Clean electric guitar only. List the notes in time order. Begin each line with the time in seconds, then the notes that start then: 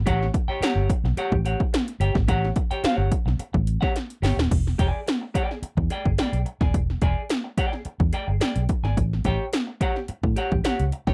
0.06 G4 C#5 F#5
0.34 muted clean electric guitar stroke
0.48 G4 C#5 G5
0.62 G4 C#5 F#5
0.90 muted clean electric guitar stroke
1.05 muted clean electric guitar stroke
1.17 G4 C#5 F#5
1.32 muted clean electric guitar stroke
1.45 G4 C#5 F#5
1.60 muted clean electric guitar stroke
1.73 muted clean electric guitar stroke
2.00 G4 C#5 G5
2.14 muted clean electric guitar stroke
2.28 G4 C#5 F#5
2.56 muted clean electric guitar stroke
2.71 G4 C#5 G5
2.84 F#4 C5 F5
2.95 G4 C#5 F#5
3.11 muted clean electric guitar stroke
3.26 muted clean electric guitar stroke
3.39 muted clean electric guitar stroke
3.53 muted clean electric guitar stroke
3.81 G4 C#5 F#5
3.95 muted clean electric guitar stroke
4.22 G4 C#5 G5
4.37 muted clean electric guitar stroke
4.78 G#4 D5 G#5
5.06 muted clean electric guitar stroke
5.22 muted clean electric guitar stroke
5.34 G#4 D5 G5
5.50 muted clean electric guitar stroke
5.63 muted clean electric guitar stroke
5.77 muted clean electric guitar stroke
5.90 G#4 D5 G5
6.05 muted clean electric guitar stroke
6.18 G#4 D5 G5
6.46 muted clean electric guitar stroke
6.61 G#4 D5 G#5
7.02 G#4 D5 G#5
7.29 muted clean electric guitar stroke
7.44 muted clean electric guitar stroke
7.57 G#4 D5 G5
7.72 muted clean electric guitar stroke
7.85 muted clean electric guitar stroke
8.00 muted clean electric guitar stroke
8.13 G#4 D5 G5
8.28 muted clean electric guitar stroke
8.41 G#4 D5 G5
8.69 muted clean electric guitar stroke
8.84 G#4 D5 G#5
9.25 G4 C#5 G5
9.53 muted clean electric guitar stroke
9.67 muted clean electric guitar stroke
9.81 G4 C#5 F#5
9.96 muted clean electric guitar stroke
10.08 muted clean electric guitar stroke
10.24 muted clean electric guitar stroke
10.36 G4 C#5 F#5
10.51 muted clean electric guitar stroke
10.64 G4 C#5 F#5
10.92 muted clean electric guitar stroke
11.07 G4 C#5 G5